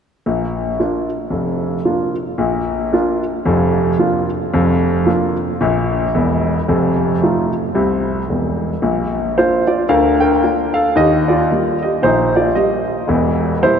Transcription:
0.26 A#1 A#2
0.79 A#3 D4 F4
1.30 F1 F2
1.85 A#3 D4 F4
2.38 A#1 A#2
2.93 A#3 D4 F4
3.45 F1 F2
3.98 A#3 D4 F4
4.53 F1 F2
5.06 A#3 D4 F4
5.61 A#1 A#2
6.14 E1 E2
6.68 F1 F2
7.22 A3 D#4 F4
7.75 C2 C3
8.29 E1 E2
8.82 A#1 A#2
9.38 A#3 D4 F4 C5
9.67 F4 D5
9.89 D2 D3 A#4 F5
10.20 A#4 G5
10.43 A#3 D4 F4
10.74 A4 F5
10.95 D#2 D#3 G4 D#5
11.28 F4 D5
11.51 G3 A#3 G4
11.83 G4 D#5
12.03 A#1 A#2 D#4 C5
12.36 F4 D5
12.55 G3 A#3 G4 D#5
13.08 E1 E2
13.62 G3 A#3 E4 C5

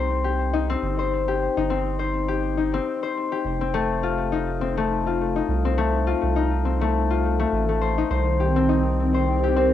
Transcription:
Already playing: C2 A3 C4 D#4 G4 C5
0.24 G4
0.53 D#4
0.70 C4
0.82 G1
0.99 C5
1.28 G4
1.57 G1 D#4
1.70 C4
1.99 C5
2.28 G4
2.57 D#4
2.74 C4
3.03 C5
3.32 G4
3.45 F1
3.61 C4
3.74 A3
4.03 F4
4.32 D#4
4.61 C4
4.77 A3
5.07 F4
5.36 D#4
5.48 C2
5.65 C4
5.78 A3
6.07 F4
6.23 C2
6.36 D#4
6.65 C4
6.81 A3
7.10 F4
7.40 A3
7.52 A1
7.69 A3
7.82 C5
7.98 D#4
8.11 C2 D#3 C5
8.30 C4
8.40 G4
8.56 C4
8.69 D#4
9.12 G4 C5
9.33 C5
9.44 G4
9.56 C4

